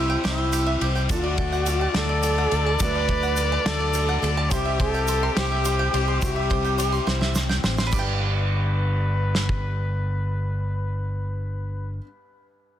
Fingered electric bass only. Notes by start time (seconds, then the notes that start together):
Already playing: C2
0.24 C2
0.81 C2
1.10 D2
1.95 D2
2.52 D2
2.80 D2
3.66 D2
4.22 D2
4.52 C2
5.36 C2
5.94 C2
6.22 C2
7.07 C2
7.64 A1
7.93 G1